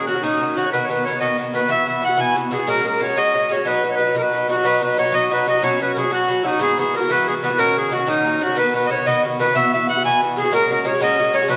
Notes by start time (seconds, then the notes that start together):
0.07 A#2 D#3 C#4 F#4
0.15 D#3 C#4 F#4
0.22 A#2 D#3 C#4 D#4 F#4
0.40 A#2 D#3 C#4 F#4
0.56 A#2 D#3 C#4 F#4
0.64 D#3 C#4 F#4
0.71 B2 D#3 B3 F#4 B4
0.84 C#5
0.89 B2 D#3 B3 F#4 B4
1.05 B2 D#3 B3 F#4 C#5
1.13 D#3 B3 F#4
1.20 B2 D#3 B3 F#4 D#5
1.38 B2 D#3 B3 F#4
1.53 B2 D#3 B3 F#4 B4
1.61 D#3 B3 F#4
1.68 B2 E3 B3 F#4 E5
1.86 B2 E3 B3 F#4 E5
2.01 B2 E3 B3 F#4 F#5
2.09 E3 B3 F#4
2.17 B2 E3 B3 F#4 G#5
2.35 B2 E3 B3 F#4
2.51 B2 E3 B3 F#4 G#4
2.58 E3 B3 F#4
2.67 A#2 G#3 C#4 F#4 A#4
2.84 A#2 G#3 C#4 F#4 A#4
3.00 A#2 G#3 C#4 F#4 C#5
3.07 G#3 C#4 F#4
3.16 A#2 G#3 C#4 F#4 D#5
3.33 A#2 G#3 C#4 F#4
3.49 A#2 G#3 C#4 F#4 C#5
3.56 G#3 C#4 F#4
3.65 B2 F#3 D#4 F#4 B4
3.82 B2 D#4 F#4
3.91 C#5
3.96 B2 F#3 D#4 B4
4.00 F#4
4.07 F#3 D#4 F#4
4.15 B2 F#3 D#4 F#4 A#4
4.22 B4
4.33 B2 F#3 D#4 F#4
4.48 B2 F#3 D#4 F#4
4.56 F#3 D#4 F#4
4.63 B2 F#3 D#4 F#4 B4
4.81 B2 F#3 D#4 F#4 B4
4.97 B2 F#3 D#4 F#4 C#5
5.04 F#3 D#4 F#4
5.12 B2 F#3 D#4 F#4 D#5
5.29 B2 F#3 D#4 F#4 B4
5.46 B2 F#3 D#4 F#4 D#5
5.54 F#3 D#4 F#4
5.62 B2 F#3 C#4 F#4 C#5
5.80 B2 F#3 C#4 F#4 B4
5.94 B2 F#3 C#4 G#4 A#4
5.98 F#4
6.04 F#3 C#4 F#4
6.11 B2 F#3 C#4 F#4
6.28 B2 F#3 C#4 F#4
6.43 B2 F#3 C#4 D#4 E4 F#4
6.51 F#3 C#4 F#4
6.59 G#2 E3 B3 F#4 G#4
6.77 G#2 E3 B3 F#4 G#4
6.93 G#2 E3 B3 F#4 A#4
7.01 E3 B3 F#4
7.09 G#2 E3 B3 F#4 B4
7.27 G#2 E3 B3 F#4 G#4
7.43 G#2 E3 B3 F#4 B4
7.50 E3 B3 F#4
7.58 A#2 D#3 C#4 F#4 A#4
7.76 A#2 D#3 C#4 F#4 G#4
7.91 A#2 D#3 C#4 F#4
7.99 D#3 C#4 F#4
8.07 A#2 D#3 C#4 D#4 F#4
8.25 A#2 D#3 C#4 F#4
8.39 A#2 D#3 C#4 F#4
8.47 D#3 C#4 F#4
8.55 B2 D#3 B3 F#4 B4
8.73 B2 D#3 B3 F#4 B4
8.86 B2 D#3 C#5 D#5
8.91 B3 F#4 C#5
8.98 D#3 B3 F#4
9.05 B2 D#3 B3 F#4 D#5
9.24 B2 D#3 B3 F#4
9.38 B2 D#3 B3 F#4 B4
9.47 D#3 B3 F#4
9.54 B2 E3 B3 F#4 E5
9.72 B2 E3 B3 F#4 E5
9.87 B2 E3 B3 F#4 F#5
9.97 E3 B3 F#4
10.04 B2 E3 B3 F#4 G#5
10.22 B2 E3 B3 F#4
10.36 B2 E3 B3 F#4 G#4
10.44 E3 B3 F#4
10.51 A#2 G#3 C#4 F#4 A#4
10.69 A#2 G#3 C#4 F#4 A#4
10.84 A#2 G#3 C#4 F#4 C#5
10.92 G#3 C#4 F#4
11.00 A#2 G#3 C#4 F#4 D#5
11.18 A#2 G#3 C#4 F#4 D#5
11.33 A#2 G#3 C#4 F#4 C#5
11.40 G#3 C#4 F#4
11.48 B2 F#3 D#4 F#4 B4